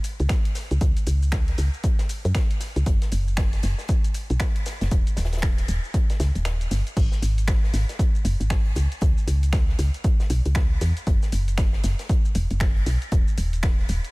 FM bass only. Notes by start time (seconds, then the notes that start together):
0.20 C#2
0.71 C#2
0.81 C#2
1.07 C#2
1.58 C#2
2.25 F#2
2.76 C#2
2.86 F#1
3.12 F#1
3.63 F#1
4.30 B1
4.81 F#1
4.92 D#1
5.17 D#1
5.68 D#1
6.20 C#2
6.35 D#1
6.71 G1
6.97 G#1
7.22 G#1
7.73 G#1
8.25 F#1
8.40 G#1
8.76 C#2
9.02 C#2
9.27 C#2
9.79 C#2
10.30 B1
10.46 C#2
10.81 E2
11.07 F#1
11.32 F#1
11.84 F#1
12.35 E1
12.51 F#1
12.86 B1
13.12 D#1
13.38 D#1
13.89 D#1